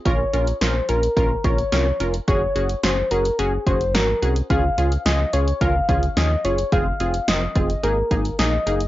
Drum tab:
HH |x-xxx-xxx-xxx-xx|x-xxx-xxx-xxx-xx|x-xxx-xxx-xxx-xx|x-xxx-xxx-xxx-xx|
SD |----o-------o---|----o-------o---|----o-------o---|----o-------o---|
BD |o-------o-o-----|o---------o-----|o-------o-o-----|o-----o---o-----|